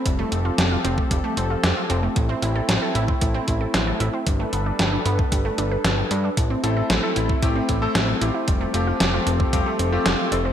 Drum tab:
HH |x-x-x-x-x-x-x-x-|x-x-x-x-x-x-x-x-|x-x-x-x-x-x-x-x-|x-x-x-x-x-x-x-x-|
SD |----o-------o---|----o-------o---|----o-------o---|----o-------o---|
BD |o------oo-------|o------oo-o-----|o------oo-------|o------oo-o-----|

HH |x-x-x-x-x-x-x-x-|
SD |----o-------o---|
BD |o------oo-------|